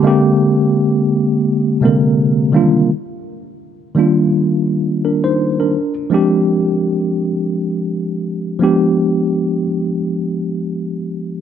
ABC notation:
X:1
M:4/4
L:1/16
Q:"Swing 16ths" 1/4=84
K:Fdor
V:1 name="Tine electric piano"
[D,A,B,CG]2 z8 [C,D,A,B,CB]4 [E,G,B,DF]2 | z6 [E,G,B,DF]2 z4 [DB] [Ec]2 [DB]- | [DB] z [F,A,CDG]2 z12 | [F,A,=B,DG]6 z8 z2 |]